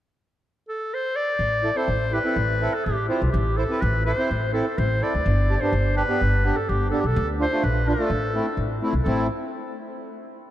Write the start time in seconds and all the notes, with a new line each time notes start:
0.68 A4
0.94 C5
1.16 D5
1.39 A1
1.63 E4 A4
1.76 C4 E4 A4 C5
1.88 A1
2.12 E4 G4 B4
2.25 C4 E4 A4
2.36 A1
2.61 C4 E4 A4
2.74 A4
2.84 A1 G4
3.09 C4 E4 F4 C5
3.22 C2
3.32 A1 G4
3.57 E4 A4 C5
3.70 C4 E4 B4
3.81 A1 B4
4.05 E4 A4 C5
4.18 C4 E4 C5
4.31 A1
4.53 C4 E4 A4
4.78 A1 C5
5.02 C4 E4 A4 D5
5.14 D2
5.26 G1
5.49 D4 G4
5.60 B3 D4 G4 C5
5.72 G1
5.96 D4 G4 B4
6.09 B3 D4 G4
6.21 G1
6.44 B3 D4 G4
6.56 A4
6.69 G1 G4
6.91 B3 D4 G4 A4
7.01 B1 G4
7.07 A4
7.16 D2
7.40 D4 F4 C5
7.52 A3 D4 F4
7.63 A#1 B4
7.87 D4 F4 A4
7.99 A3 D4 F4
8.10 A1
8.34 A3 C4 E4
8.57 A1
8.82 A3 C4 E4
8.93 C2
9.03 A1 A3 C4 E4 A4